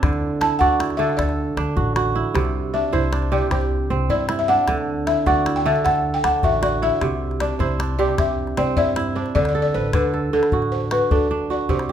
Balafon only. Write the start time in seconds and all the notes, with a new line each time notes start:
0.41 A5
0.59 F#5
0.97 E5
1.17 D5
2.74 E5
2.93 C5
3.32 D5
3.52 C5
4.10 D5
4.39 E5
4.48 F#5
5.07 E5
5.26 F#5
5.56 G5
5.66 E5
5.85 F#5
6.14 G5
6.24 F#5
6.44 E5
6.63 D5
6.83 E5
7.40 D5
7.59 C5
7.99 D5
8.19 E5
8.58 D5
8.77 D5 E5
9.15 C5
9.35 D5
9.49 D5
9.62 D5
9.74 C5
9.94 B4
10.33 A4
10.72 C5
10.92 B4
11.11 A4
11.51 D5
11.70 C5